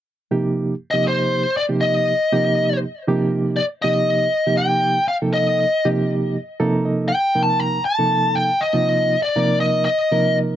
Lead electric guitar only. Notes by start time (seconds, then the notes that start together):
0.91 D#5
1.08 C5
1.57 D5
1.81 D#5
3.56 D5
3.82 D#5
4.57 G5
5.08 F5
5.33 D#5
7.09 G5
7.43 A5
7.60 A#5
7.85 A5
8.35 G5
8.61 D#5
9.22 D5
9.60 D#5
9.85 D#5